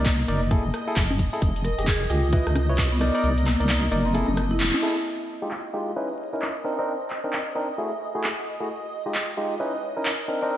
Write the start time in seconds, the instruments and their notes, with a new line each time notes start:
Already playing: wobble bass C2, tine electric piano D5, string machine D#5
0.05 marimba A#3, kick, clap, closed hi-hat
0.28 wobble bass F#1, tine electric piano D#4 A#4 D5, closed hi-hat
0.51 tine electric piano E4 G#4 A4, kick, closed hi-hat
0.65 wobble bass F#1
0.74 cross-stick, closed hi-hat
0.88 tine electric piano E4 G#4 A4
0.96 wobble bass F#1, kick, clap, closed hi-hat
1.11 high conga
1.19 kick, closed hi-hat
1.33 tine electric piano E4 G#4 A4, closed hi-hat
1.42 wobble bass F1, kick, closed hi-hat
1.56 closed hi-hat
1.64 marimba A#4, closed hi-hat
1.78 wobble bass F1, tine electric piano G4 G#4 D#5, closed hi-hat
1.87 marimba G#4, kick, clap, closed hi-hat
2.10 wobble bass C#2, marimba F4, tine electric piano G4 G#4 D#5, closed hi-hat
2.33 tine electric piano E4 B4 D#5, kick, closed hi-hat
2.47 wobble bass C#2, cross-stick
2.56 cross-stick, closed hi-hat, high conga
2.69 tine electric piano E4 B4 C#5
2.78 wobble bass C2, kick, clap, closed hi-hat
2.92 marimba B3
3.01 tine electric piano D#4 A#4 D5, cross-stick, closed hi-hat
3.15 tine electric piano D#4 A#4 D5, closed hi-hat
3.24 wobble bass C2, closed hi-hat
3.38 closed hi-hat
3.46 marimba A#3, cross-stick, clap, closed hi-hat
3.60 wobble bass C2, tine electric piano D#4 A#4 D5, closed hi-hat
3.69 clap, closed hi-hat
3.92 wobble bass F#1, marimba A#3, tine electric piano D#4 A#4 D5, closed hi-hat
4.05 marimba C4
4.14 tine electric piano E4 G#4 A4, closed hi-hat
4.28 wobble bass F#1, high conga
4.37 cross-stick, closed hi-hat
4.51 marimba E4
4.60 wobble bass E1, clap, closed hi-hat
4.74 high conga
4.82 tine electric piano E4 G#4 A4, closed hi-hat
4.97 closed hi-hat
5.06 string machine D#5
5.42 tine electric piano G#3 D#4 F4 G4
5.51 clap
5.74 tine electric piano G#3 D#4 F4 G4
5.96 tine electric piano C#4 D#4 E4 B4
6.33 tine electric piano C#4 D#4 E4 A#4
6.42 clap
6.64 tine electric piano C4 D4 D#4 A#4
6.79 tine electric piano C4 D4 D#4 A#4
7.10 clap
7.24 tine electric piano C4 D4 D#4 A#4
7.33 clap
7.55 tine electric piano C4 D4 D#4 A#4
7.78 tine electric piano A3 E4 F#4 G#4
8.15 tine electric piano A3 E4 F#4 G#4
8.24 clap
8.60 tine electric piano A3 E4 F#4 G#4
9.06 tine electric piano G#3 D#4 F4 G4
9.15 clap
9.37 tine electric piano G#3 D#4 F4 G4
9.60 tine electric piano C#4 D#4 E4 B4
9.97 tine electric piano C#4 D#4 E4 A#4
10.05 clap
10.28 tine electric piano C4 D4 D#4 A#4
10.42 tine electric piano C4 D4 D#4 A#4